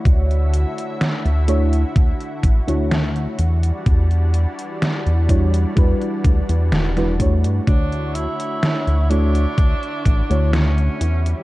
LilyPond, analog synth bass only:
\new Staff \with { instrumentName = "Analog synth bass" } { \clef bass \time 4/4 \key d \major \tempo 4 = 63 d,8 r8. d,8 r16 d,16 r16 a,,16 d,8 r16 e,16 r16 | e,8 r8. e,8 r16 e,16 r16 d,16 e,16 e,,8 e,16 g,16 | d,8 r8. d,8 r16 d,16 r16 a,,16 d,8 r16 e,16 r16 | }